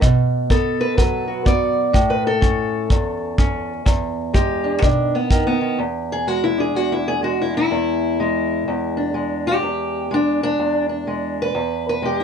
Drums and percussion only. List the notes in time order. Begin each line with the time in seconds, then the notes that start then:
0.02 kick
0.50 kick
0.98 kick
1.46 kick
1.94 kick
2.42 kick
2.90 kick
3.38 kick
3.86 kick
4.34 kick
4.83 kick
5.31 kick